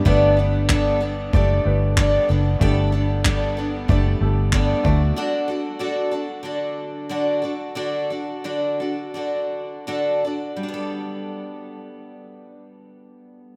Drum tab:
CP |--x---x-|--x---x-|--------|--------|
BD |o-o-o-o-|o-o-o-oo|--------|--------|

CP |--------|
BD |--------|